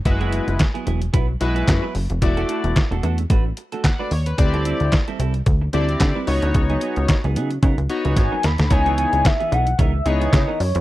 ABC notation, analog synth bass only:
X:1
M:4/4
L:1/16
Q:"Swing 16ths" 1/4=111
K:C#phr
V:1 name="Analog synth bass" clef=bass
F,,,3 F,,, z2 E,,,2 B,,,2 B,,,2 F,, z F,,, ^E,,, | E,,,2 z E,,, z E,,, E,,2 A,,,2 z4 ^D,,2 | D,,3 D,, z2 =C,,2 D,,2 D,,2 D, z ^C,, D,, | C,,2 z C,, z C,, C,2 C, C,, z C,, G,,, z ^D,, =D,, |
[K:C#m] C,,3 C,, z2 B,,,2 C,,2 C,,2 C, z F,, ^E,, |]